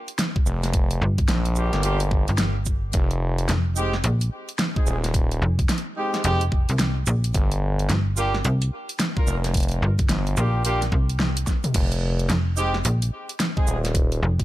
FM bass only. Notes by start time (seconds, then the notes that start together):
1.02 G1
2.29 G1
3.49 F1
4.04 A#1
5.42 F1
6.25 F1
6.70 C2
7.07 A#1
7.90 G1
8.45 C2
9.82 G1
10.37 A#1
10.92 C2
12.30 F1
12.85 A#1
14.23 F1